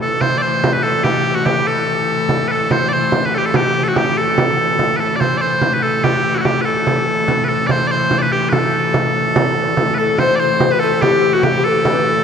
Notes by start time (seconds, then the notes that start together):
Already playing: A2 E3
0.01 A4, frame drum
0.21 C5, frame drum
0.38 D5
0.42 C5
0.64 frame drum
0.73 B4
0.83 A4, frame drum
1.04 G4, frame drum
1.26 frame drum
1.35 F#4
1.46 G4, frame drum
1.67 A4
2.08 frame drum
2.29 frame drum
2.48 A4 B4, frame drum
2.71 C5, frame drum
2.88 D5
2.93 C5
3.12 frame drum
3.25 B4
3.33 A4, frame drum
3.38 G4
3.46 A4
3.54 G4, frame drum
3.75 frame drum
3.84 A4
3.88 F#4
3.96 G4, frame drum
4.17 A4, frame drum
4.38 frame drum
4.79 A2 E3, frame drum
4.97 A4 B4, frame drum
5.16 D5
5.20 C5, frame drum
5.37 C5 D5
5.61 frame drum
5.73 B4
5.83 A4, frame drum
6.04 G4, frame drum
6.35 F#4
6.40 F#4
6.45 G4, frame drum
6.61 A4 B4
6.87 frame drum
7.07 frame drum
7.28 frame drum
7.44 B4
7.49 A4, frame drum
7.67 D5, frame drum
7.71 C5
7.87 C5 D5
8.11 frame drum
8.18 B4 D5
8.32 G4, frame drum
8.49 A4 B4, frame drum
8.94 frame drum
9.36 frame drum
9.57 frame drum
9.77 A2 E3, frame drum
9.95 A4 B4, frame drum
10.00 A4
10.18 C5, frame drum
10.35 C5 D5
10.41 C5
10.60 frame drum
10.71 B4
10.80 A4, frame drum
11.02 G4, frame drum
11.23 frame drum
11.33 F#4
11.43 G4 A4, frame drum
11.49 G4
11.64 A4 B4
11.69 A4
11.85 frame drum
11.92 B4
12.06 frame drum